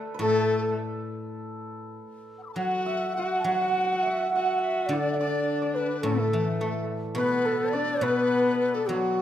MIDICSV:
0, 0, Header, 1, 6, 480
1, 0, Start_track
1, 0, Tempo, 580833
1, 165, Time_signature, 4, 2, 24, 8
1, 1127, Tempo, 599401
1, 3047, Tempo, 570885
1, 7634, End_track
2, 0, Start_track
2, 0, Title_t, "Dizi"
2, 0, Program_c, 0, 73
2, 158, Note_on_c, 0, 69, 97
2, 607, Note_off_c, 0, 69, 0
2, 1942, Note_on_c, 0, 78, 36
2, 1977, Note_off_c, 0, 78, 0
2, 1982, Note_on_c, 0, 88, 37
2, 2002, Note_off_c, 0, 88, 0
2, 2006, Note_on_c, 0, 86, 41
2, 2024, Note_off_c, 0, 86, 0
2, 2029, Note_on_c, 0, 83, 44
2, 2056, Note_off_c, 0, 83, 0
2, 2061, Note_on_c, 0, 81, 47
2, 2086, Note_off_c, 0, 81, 0
2, 2091, Note_on_c, 0, 78, 82
2, 2544, Note_off_c, 0, 78, 0
2, 2564, Note_on_c, 0, 78, 75
2, 2791, Note_off_c, 0, 78, 0
2, 2811, Note_on_c, 0, 78, 83
2, 3141, Note_off_c, 0, 78, 0
2, 3160, Note_on_c, 0, 78, 80
2, 3502, Note_off_c, 0, 78, 0
2, 3539, Note_on_c, 0, 78, 80
2, 3760, Note_off_c, 0, 78, 0
2, 3771, Note_on_c, 0, 76, 76
2, 4007, Note_on_c, 0, 74, 74
2, 4020, Note_off_c, 0, 76, 0
2, 4248, Note_off_c, 0, 74, 0
2, 4252, Note_on_c, 0, 74, 75
2, 4692, Note_off_c, 0, 74, 0
2, 4715, Note_on_c, 0, 71, 70
2, 4957, Note_on_c, 0, 69, 73
2, 4970, Note_off_c, 0, 71, 0
2, 5425, Note_off_c, 0, 69, 0
2, 5430, Note_on_c, 0, 69, 59
2, 5652, Note_off_c, 0, 69, 0
2, 5902, Note_on_c, 0, 71, 90
2, 6367, Note_on_c, 0, 74, 86
2, 6379, Note_off_c, 0, 71, 0
2, 6612, Note_on_c, 0, 71, 87
2, 6625, Note_off_c, 0, 74, 0
2, 7106, Note_off_c, 0, 71, 0
2, 7111, Note_on_c, 0, 71, 77
2, 7222, Note_off_c, 0, 71, 0
2, 7227, Note_on_c, 0, 69, 67
2, 7350, Note_on_c, 0, 66, 71
2, 7362, Note_off_c, 0, 69, 0
2, 7634, Note_off_c, 0, 66, 0
2, 7634, End_track
3, 0, Start_track
3, 0, Title_t, "Hammered dulcimer"
3, 0, Program_c, 1, 15
3, 0, Note_on_c, 1, 69, 70
3, 0, Note_on_c, 1, 71, 49
3, 0, Note_on_c, 1, 74, 68
3, 115, Note_off_c, 1, 71, 0
3, 119, Note_on_c, 1, 71, 69
3, 170, Note_off_c, 1, 69, 0
3, 174, Note_on_c, 1, 69, 87
3, 685, Note_off_c, 1, 74, 0
3, 2092, Note_on_c, 1, 78, 76
3, 2326, Note_on_c, 1, 76, 68
3, 2333, Note_off_c, 1, 71, 0
3, 2546, Note_off_c, 1, 69, 0
3, 2577, Note_off_c, 1, 78, 0
3, 2580, Note_on_c, 1, 78, 74
3, 2817, Note_off_c, 1, 78, 0
3, 2820, Note_on_c, 1, 78, 77
3, 2869, Note_off_c, 1, 78, 0
3, 2872, Note_on_c, 1, 78, 55
3, 2928, Note_off_c, 1, 78, 0
3, 2931, Note_on_c, 1, 78, 63
3, 2991, Note_off_c, 1, 78, 0
3, 2994, Note_on_c, 1, 78, 59
3, 3056, Note_off_c, 1, 78, 0
3, 3059, Note_on_c, 1, 78, 67
3, 3110, Note_off_c, 1, 78, 0
3, 3114, Note_on_c, 1, 78, 57
3, 3182, Note_off_c, 1, 78, 0
3, 3186, Note_on_c, 1, 78, 65
3, 3296, Note_off_c, 1, 76, 0
3, 3299, Note_on_c, 1, 76, 73
3, 3545, Note_off_c, 1, 78, 0
3, 3548, Note_on_c, 1, 78, 76
3, 4027, Note_on_c, 1, 74, 77
3, 4260, Note_off_c, 1, 74, 0
3, 4263, Note_on_c, 1, 74, 75
3, 4605, Note_off_c, 1, 74, 0
3, 4608, Note_on_c, 1, 74, 70
3, 4728, Note_on_c, 1, 71, 68
3, 4974, Note_on_c, 1, 69, 73
3, 5228, Note_off_c, 1, 76, 0
3, 5346, Note_off_c, 1, 78, 0
3, 5434, Note_off_c, 1, 69, 0
3, 5438, Note_on_c, 1, 69, 62
3, 5916, Note_off_c, 1, 71, 0
3, 5920, Note_on_c, 1, 71, 87
3, 6143, Note_off_c, 1, 69, 0
3, 6146, Note_on_c, 1, 69, 77
3, 6382, Note_off_c, 1, 74, 0
3, 6385, Note_on_c, 1, 74, 86
3, 6632, Note_off_c, 1, 71, 0
3, 6635, Note_on_c, 1, 71, 84
3, 7235, Note_off_c, 1, 69, 0
3, 7239, Note_on_c, 1, 69, 63
3, 7372, Note_on_c, 1, 66, 65
3, 7634, Note_off_c, 1, 66, 0
3, 7634, Note_off_c, 1, 69, 0
3, 7634, Note_off_c, 1, 71, 0
3, 7634, Note_off_c, 1, 74, 0
3, 7634, End_track
4, 0, Start_track
4, 0, Title_t, "Xiao"
4, 0, Program_c, 2, 77
4, 166, Note_on_c, 2, 69, 107
4, 611, Note_off_c, 2, 69, 0
4, 2093, Note_on_c, 2, 78, 86
4, 2309, Note_off_c, 2, 78, 0
4, 2314, Note_on_c, 2, 76, 79
4, 2550, Note_on_c, 2, 78, 84
4, 2562, Note_off_c, 2, 76, 0
4, 2745, Note_off_c, 2, 78, 0
4, 2751, Note_on_c, 2, 81, 64
4, 2800, Note_on_c, 2, 78, 91
4, 2812, Note_off_c, 2, 81, 0
4, 3266, Note_on_c, 2, 76, 80
4, 3279, Note_off_c, 2, 78, 0
4, 3501, Note_on_c, 2, 78, 83
4, 3513, Note_off_c, 2, 76, 0
4, 3741, Note_on_c, 2, 76, 83
4, 3754, Note_off_c, 2, 78, 0
4, 3973, Note_on_c, 2, 74, 86
4, 3986, Note_off_c, 2, 76, 0
4, 4174, Note_off_c, 2, 74, 0
4, 4191, Note_on_c, 2, 76, 64
4, 4212, Note_on_c, 2, 74, 86
4, 4225, Note_off_c, 2, 76, 0
4, 4717, Note_on_c, 2, 71, 76
4, 4730, Note_off_c, 2, 74, 0
4, 4928, Note_off_c, 2, 71, 0
4, 4933, Note_on_c, 2, 69, 69
4, 5624, Note_off_c, 2, 69, 0
4, 5911, Note_on_c, 2, 71, 104
4, 6155, Note_on_c, 2, 69, 97
4, 6168, Note_off_c, 2, 71, 0
4, 6399, Note_on_c, 2, 74, 100
4, 6412, Note_off_c, 2, 69, 0
4, 6635, Note_on_c, 2, 71, 99
4, 6648, Note_off_c, 2, 74, 0
4, 7238, Note_on_c, 2, 69, 85
4, 7251, Note_off_c, 2, 71, 0
4, 7355, Note_on_c, 2, 66, 86
4, 7367, Note_off_c, 2, 69, 0
4, 7634, Note_off_c, 2, 66, 0
4, 7634, End_track
5, 0, Start_track
5, 0, Title_t, "Horsehead fiddle"
5, 0, Program_c, 3, 110
5, 178, Note_on_c, 3, 57, 83
5, 617, Note_off_c, 3, 57, 0
5, 2095, Note_on_c, 3, 66, 78
5, 2546, Note_off_c, 3, 66, 0
5, 2576, Note_on_c, 3, 66, 74
5, 2797, Note_off_c, 3, 66, 0
5, 2830, Note_on_c, 3, 66, 86
5, 3506, Note_off_c, 3, 66, 0
5, 3542, Note_on_c, 3, 66, 76
5, 4042, Note_on_c, 3, 62, 74
5, 4054, Note_off_c, 3, 66, 0
5, 4265, Note_off_c, 3, 62, 0
5, 4269, Note_on_c, 3, 62, 80
5, 4975, Note_on_c, 3, 57, 67
5, 4987, Note_off_c, 3, 62, 0
5, 5678, Note_off_c, 3, 57, 0
5, 5908, Note_on_c, 3, 59, 84
5, 6386, Note_on_c, 3, 62, 84
5, 6399, Note_off_c, 3, 59, 0
5, 6627, Note_off_c, 3, 62, 0
5, 6632, Note_on_c, 3, 59, 93
5, 7330, Note_off_c, 3, 59, 0
5, 7377, Note_on_c, 3, 54, 61
5, 7634, Note_off_c, 3, 54, 0
5, 7634, End_track
6, 0, Start_track
6, 0, Title_t, "Guzheng"
6, 0, Program_c, 4, 107
6, 157, Note_on_c, 4, 45, 56
6, 1605, Note_off_c, 4, 45, 0
6, 2084, Note_on_c, 4, 54, 47
6, 2783, Note_off_c, 4, 54, 0
6, 2793, Note_on_c, 4, 54, 55
6, 3993, Note_on_c, 4, 50, 59
6, 4239, Note_off_c, 4, 54, 0
6, 4956, Note_on_c, 4, 45, 62
6, 5209, Note_on_c, 4, 52, 48
6, 5423, Note_off_c, 4, 50, 0
6, 5442, Note_on_c, 4, 57, 48
6, 5894, Note_on_c, 4, 47, 63
6, 5907, Note_off_c, 4, 45, 0
6, 6156, Note_off_c, 4, 52, 0
6, 6394, Note_off_c, 4, 57, 0
6, 6611, Note_off_c, 4, 47, 0
6, 6621, Note_on_c, 4, 47, 61
6, 7357, Note_on_c, 4, 54, 56
6, 7634, Note_off_c, 4, 47, 0
6, 7634, Note_off_c, 4, 54, 0
6, 7634, End_track
0, 0, End_of_file